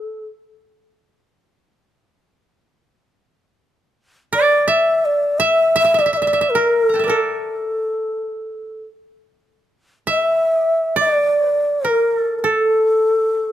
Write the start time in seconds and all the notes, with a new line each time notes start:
Already playing: A4
4.33 D5
4.68 E5
5.05 D5
5.38 E5
5.76 E5
5.94 E5
5.99 D5 E5
6.06 E5
6.13 E5
6.17 D5
6.22 E5
6.27 E5
6.33 E5
6.41 E5
6.50 A#4
6.55 A#4
6.84 A4
6.89 A#5
6.94 G5 A5
6.99 E5
7.04 A4 D5
7.08 A4 A#4
10.07 E5
10.52 D#5
10.63 D5
10.96 D5
11.01 D5
11.53 A#4
11.85 A#4
12.17 A4
12.39 A#4
12.44 A4
13.30 G#4